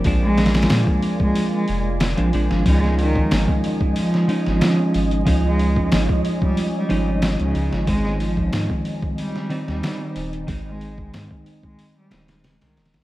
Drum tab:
HH |o---ooooo---o---o---o---o-x-o---|o---o---o---o---o---o---o---o-x-|o---o---o---o---o---o---o-x-o---|o---o---o---o---o---o---o---o-x-|
SD |----ooooo---------------o-----o-|--o-----o---------o---o-o-------|--------o---------------o-----o-|--o-----o---------o---o-o-------|
BD |o---------o---o-----------------|o-----o---o---o-----------------|o-----o---o---o-----------------|o-----o---o---o-----------------|

HH |o---o---o---o---o---o-o-o-o-ooo-|
SD |--------o-----------o-o-o-o-ooo-|
BD |o-----o---o---o-----------------|